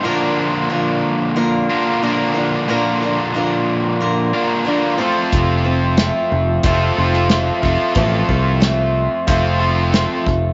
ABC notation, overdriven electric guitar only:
X:1
M:4/4
L:1/8
Q:1/4=91
K:F
V:1 name="Overdriven electric guitar"
[B,,D,F,B,DB]4- [B,,D,F,B,DB] [B,,D,F,B,DB] [B,,D,F,B,DB]2 | [B,,D,F,B,DB]4- [B,,D,F,B,DB] [B,,D,F,B,DB] [B,,D,F,B,DB] [F,CFA]- | [F,CFA]4 [F,CFA] [F,CFA]2 [F,CFA]- | [F,CFA]4 [F,CFA] [F,CFA]2 z |]